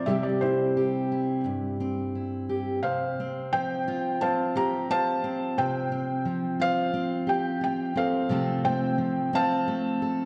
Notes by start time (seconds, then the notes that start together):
0.06 C3 G3 C4 E4 G4 E5
0.10 G4
0.23 D5
0.41 C4 E4 C5
0.77 G4
1.12 E4
1.45 G2
1.80 C4
2.15 E4
2.49 G4
2.83 C3 C5 F5
3.20 C4
3.53 F3 C5 G5
3.88 F4
4.21 C4 C5 F5 A5
4.56 G4 A#5
4.90 F4 C5 F5 A5
5.24 C4
5.58 C3 C5 G5
5.92 C4
6.25 F3
6.60 F4 C5 F5
6.93 C4
7.27 G4 G5
7.61 F4 G5
7.96 C4 A4 C5 F5
8.29 C3 F3 A3 C4 A4
8.64 A3 C5 G5
8.98 F3
9.33 C4 C5 F5 A5
9.68 A3
10.02 A4